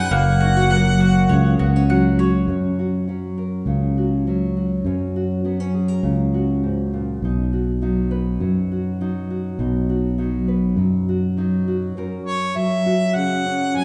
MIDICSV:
0, 0, Header, 1, 5, 480
1, 0, Start_track
1, 0, Key_signature, 6, "major"
1, 0, Tempo, 592300
1, 96, Time_signature, 4, 2, 24, 8
1, 11219, End_track
2, 0, Start_track
2, 0, Title_t, "Harmonica"
2, 0, Program_c, 0, 22
2, 108, Note_on_c, 0, 78, 101
2, 1505, Note_off_c, 0, 78, 0
2, 9934, Note_on_c, 0, 73, 74
2, 10180, Note_on_c, 0, 76, 79
2, 10192, Note_off_c, 0, 73, 0
2, 10668, Note_on_c, 0, 78, 86
2, 10680, Note_off_c, 0, 76, 0
2, 11157, Note_on_c, 0, 80, 84
2, 11169, Note_off_c, 0, 78, 0
2, 11219, Note_off_c, 0, 80, 0
2, 11219, End_track
3, 0, Start_track
3, 0, Title_t, "Mandolin"
3, 0, Program_c, 1, 25
3, 0, Note_on_c, 1, 56, 77
3, 0, Note_on_c, 1, 63, 58
3, 0, Note_on_c, 1, 71, 61
3, 0, Note_on_c, 1, 78, 73
3, 88, Note_off_c, 1, 56, 0
3, 91, Note_on_c, 1, 58, 79
3, 94, Note_off_c, 1, 78, 0
3, 97, Note_on_c, 1, 78, 66
3, 140, Note_off_c, 1, 71, 0
3, 141, Note_off_c, 1, 63, 0
3, 328, Note_on_c, 1, 66, 65
3, 563, Note_off_c, 1, 78, 0
3, 573, Note_on_c, 1, 78, 68
3, 804, Note_off_c, 1, 66, 0
3, 813, Note_on_c, 1, 66, 62
3, 1049, Note_on_c, 1, 73, 61
3, 1282, Note_off_c, 1, 66, 0
3, 1292, Note_on_c, 1, 66, 58
3, 1527, Note_off_c, 1, 78, 0
3, 1537, Note_on_c, 1, 78, 65
3, 1765, Note_off_c, 1, 73, 0
3, 1775, Note_on_c, 1, 73, 65
3, 2008, Note_off_c, 1, 58, 0
3, 2058, Note_off_c, 1, 66, 0
3, 2061, Note_off_c, 1, 73, 0
3, 2061, Note_off_c, 1, 78, 0
3, 11219, End_track
4, 0, Start_track
4, 0, Title_t, "Nylon-string guitar"
4, 0, Program_c, 2, 24
4, 0, Note_on_c, 2, 54, 67
4, 101, Note_on_c, 2, 42, 72
4, 350, Note_on_c, 2, 63, 56
4, 458, Note_off_c, 2, 63, 0
4, 458, Note_on_c, 2, 66, 47
4, 558, Note_off_c, 2, 54, 0
4, 567, Note_on_c, 2, 54, 69
4, 579, Note_on_c, 2, 70, 71
4, 1057, Note_on_c, 2, 49, 69
4, 1296, Note_on_c, 2, 59, 55
4, 1425, Note_off_c, 2, 59, 0
4, 1425, Note_on_c, 2, 61, 48
4, 1528, Note_off_c, 2, 54, 0
4, 1534, Note_off_c, 2, 49, 0
4, 1549, Note_on_c, 2, 54, 64
4, 1771, Note_off_c, 2, 66, 0
4, 1781, Note_on_c, 2, 66, 61
4, 1984, Note_off_c, 2, 70, 0
4, 1987, Note_off_c, 2, 66, 0
4, 2006, Note_off_c, 2, 42, 0
4, 2013, Note_off_c, 2, 61, 0
4, 2016, Note_on_c, 2, 42, 46
4, 2023, Note_on_c, 2, 61, 44
4, 2261, Note_on_c, 2, 66, 40
4, 2484, Note_off_c, 2, 54, 0
4, 2494, Note_on_c, 2, 54, 50
4, 2500, Note_off_c, 2, 61, 0
4, 2503, Note_on_c, 2, 61, 46
4, 2736, Note_on_c, 2, 70, 43
4, 2971, Note_on_c, 2, 49, 48
4, 3220, Note_off_c, 2, 66, 0
4, 3223, Note_on_c, 2, 66, 44
4, 3451, Note_off_c, 2, 49, 0
4, 3453, Note_off_c, 2, 61, 0
4, 3456, Note_off_c, 2, 54, 0
4, 3459, Note_on_c, 2, 54, 50
4, 3463, Note_on_c, 2, 61, 47
4, 3698, Note_off_c, 2, 66, 0
4, 3701, Note_on_c, 2, 66, 44
4, 3905, Note_off_c, 2, 70, 0
4, 3908, Note_off_c, 2, 61, 0
4, 3929, Note_off_c, 2, 42, 0
4, 3939, Note_on_c, 2, 42, 51
4, 3942, Note_on_c, 2, 61, 42
4, 4179, Note_off_c, 2, 66, 0
4, 4182, Note_on_c, 2, 66, 43
4, 4409, Note_off_c, 2, 54, 0
4, 4412, Note_on_c, 2, 54, 49
4, 4414, Note_off_c, 2, 61, 0
4, 4417, Note_on_c, 2, 59, 43
4, 4537, Note_off_c, 2, 59, 0
4, 4537, Note_on_c, 2, 61, 38
4, 4651, Note_on_c, 2, 68, 44
4, 4767, Note_off_c, 2, 68, 0
4, 4767, Note_on_c, 2, 70, 35
4, 4885, Note_on_c, 2, 49, 48
4, 5136, Note_off_c, 2, 66, 0
4, 5139, Note_on_c, 2, 66, 45
4, 5371, Note_off_c, 2, 42, 0
4, 5374, Note_on_c, 2, 44, 48
4, 5613, Note_off_c, 2, 44, 0
4, 5619, Note_on_c, 2, 46, 51
4, 5849, Note_off_c, 2, 49, 0
4, 5850, Note_off_c, 2, 70, 0
4, 5856, Note_off_c, 2, 46, 0
4, 5856, Note_off_c, 2, 61, 0
4, 5864, Note_on_c, 2, 47, 48
4, 5873, Note_on_c, 2, 63, 46
4, 6097, Note_off_c, 2, 66, 0
4, 6100, Note_on_c, 2, 66, 42
4, 6331, Note_off_c, 2, 54, 0
4, 6334, Note_on_c, 2, 54, 47
4, 6337, Note_off_c, 2, 63, 0
4, 6340, Note_on_c, 2, 63, 48
4, 6572, Note_on_c, 2, 71, 44
4, 6815, Note_off_c, 2, 54, 0
4, 6815, Note_on_c, 2, 54, 49
4, 7061, Note_off_c, 2, 66, 0
4, 7064, Note_on_c, 2, 66, 40
4, 7292, Note_off_c, 2, 63, 0
4, 7299, Note_off_c, 2, 54, 0
4, 7299, Note_on_c, 2, 54, 52
4, 7304, Note_on_c, 2, 63, 48
4, 7536, Note_off_c, 2, 66, 0
4, 7540, Note_on_c, 2, 66, 44
4, 7745, Note_off_c, 2, 71, 0
4, 7750, Note_off_c, 2, 63, 0
4, 7752, Note_off_c, 2, 47, 0
4, 7773, Note_on_c, 2, 47, 52
4, 7780, Note_on_c, 2, 63, 43
4, 8015, Note_off_c, 2, 66, 0
4, 8018, Note_on_c, 2, 66, 44
4, 8240, Note_off_c, 2, 54, 0
4, 8244, Note_off_c, 2, 63, 0
4, 8250, Note_on_c, 2, 54, 49
4, 8254, Note_on_c, 2, 63, 43
4, 8491, Note_on_c, 2, 71, 44
4, 8723, Note_off_c, 2, 54, 0
4, 8732, Note_on_c, 2, 54, 47
4, 8975, Note_off_c, 2, 66, 0
4, 8985, Note_on_c, 2, 66, 45
4, 9206, Note_off_c, 2, 54, 0
4, 9213, Note_off_c, 2, 63, 0
4, 9216, Note_on_c, 2, 54, 47
4, 9223, Note_on_c, 2, 63, 46
4, 9454, Note_off_c, 2, 66, 0
4, 9463, Note_on_c, 2, 66, 45
4, 9665, Note_off_c, 2, 71, 0
4, 9666, Note_off_c, 2, 47, 0
4, 9670, Note_off_c, 2, 63, 0
4, 9671, Note_off_c, 2, 66, 0
4, 9701, Note_on_c, 2, 42, 61
4, 9708, Note_on_c, 2, 70, 56
4, 10166, Note_off_c, 2, 54, 0
4, 10175, Note_on_c, 2, 54, 62
4, 10422, Note_on_c, 2, 66, 53
4, 10657, Note_on_c, 2, 49, 56
4, 10906, Note_on_c, 2, 61, 47
4, 11135, Note_off_c, 2, 49, 0
4, 11141, Note_off_c, 2, 54, 0
4, 11144, Note_on_c, 2, 54, 60
4, 11219, Note_off_c, 2, 42, 0
4, 11219, Note_off_c, 2, 54, 0
4, 11219, Note_off_c, 2, 61, 0
4, 11219, Note_off_c, 2, 66, 0
4, 11219, Note_off_c, 2, 70, 0
4, 11219, End_track
5, 0, Start_track
5, 0, Title_t, "Fingered electric bass"
5, 0, Program_c, 3, 33
5, 89, Note_on_c, 3, 30, 102
5, 1017, Note_off_c, 3, 30, 0
5, 1050, Note_on_c, 3, 37, 97
5, 1279, Note_off_c, 3, 37, 0
5, 1296, Note_on_c, 3, 37, 80
5, 1980, Note_off_c, 3, 37, 0
5, 2006, Note_on_c, 3, 42, 73
5, 2936, Note_off_c, 3, 42, 0
5, 2963, Note_on_c, 3, 37, 69
5, 3894, Note_off_c, 3, 37, 0
5, 3927, Note_on_c, 3, 42, 75
5, 4857, Note_off_c, 3, 42, 0
5, 4887, Note_on_c, 3, 37, 71
5, 5818, Note_off_c, 3, 37, 0
5, 5853, Note_on_c, 3, 35, 69
5, 6782, Note_off_c, 3, 35, 0
5, 6809, Note_on_c, 3, 42, 67
5, 7740, Note_off_c, 3, 42, 0
5, 7771, Note_on_c, 3, 35, 73
5, 8701, Note_off_c, 3, 35, 0
5, 8723, Note_on_c, 3, 42, 68
5, 9657, Note_off_c, 3, 42, 0
5, 11219, End_track
0, 0, End_of_file